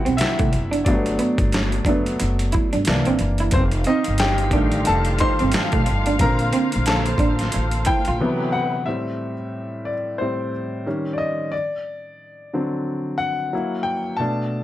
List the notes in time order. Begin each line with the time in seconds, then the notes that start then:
Already playing: C3 E3 G3 B3 C4 E4 F#4 G4 B4 C5 E5 F#5 G5
0.05 B1 C4, closed hi-hat
0.17 E5, closed hi-hat
0.21 E4, snare, clap
0.39 C2 A3, kick, closed hi-hat
0.52 F#1, muted clean electric guitar stroke, closed hi-hat
0.71 D4, closed hi-hat
0.85 G1 F#3 A3 B3 D5, kick, closed hi-hat
0.89 D4
1.06 closed hi-hat
1.19 B3, closed hi-hat
1.38 G1, kick, closed hi-hat
1.52 snare, clap, closed hi-hat
1.72 closed hi-hat
1.85 F#1 F#3 A3 B3 D4, kick, closed hi-hat
2.06 closed hi-hat
2.20 F#1, muted clean electric guitar stroke, closed hi-hat
2.39 closed hi-hat
2.52 E4, kick, closed hi-hat
2.73 G1 D4, closed hi-hat
2.85 C2 E3 A#3, snare, clap, closed hi-hat
2.89 D4
3.05 A#1 C4, closed hi-hat
3.19 F#1, muted clean electric guitar stroke, closed hi-hat
3.38 E4, closed hi-hat
3.51 F1 D#3 F3 F4 G4 C5 F5, kick, closed hi-hat
3.55 C4
3.71 closed hi-hat
3.84 C4 D#5, closed hi-hat
3.89 D#4
4.04 G1, closed hi-hat
4.18 G4 G5, snare, clap, closed hi-hat
4.38 closed hi-hat
4.51 A1 D#3 G3 A3 D4, kick, closed hi-hat
4.55 D4
4.72 closed hi-hat
4.85 F1 A4 A5, muted clean electric guitar stroke, closed hi-hat
5.05 closed hi-hat
5.19 D#4 C5 C6, kick, closed hi-hat
5.39 G1 C4, closed hi-hat
5.52 snare, clap, closed hi-hat
5.72 B1 A3, kick, closed hi-hat
5.86 G1, muted clean electric guitar stroke, closed hi-hat
6.06 D4, closed hi-hat
6.19 A#1 D3 A#3 C4 A#4 C5 A#5, kick, closed hi-hat
6.39 closed hi-hat
6.53 C4, closed hi-hat
6.72 A#1, closed hi-hat
6.86 A4 A5, snare, clap, closed hi-hat
7.06 closed hi-hat
7.18 A1 D4, kick, closed hi-hat
7.39 snare, closed hi-hat
7.52 A1, muted clean electric guitar stroke, closed hi-hat
7.71 closed hi-hat
7.85 E4 G5, kick, closed hi-hat
8.05 A#1 F4, closed hi-hat
8.19 C3 D3 E3 F#3 B3 E4 B4
8.52 F#5
8.86 A2 G3 C4 E5
9.85 D5
10.18 A2 G3 C4 C5
10.86 D#3 G3 C#4
11.13 D5
11.18 D#5
11.52 D5
12.53 D3 F#3 C4
13.18 F#5
13.53 F#3 A#3 E4
13.83 G5
14.17 B2 A3 D4 A5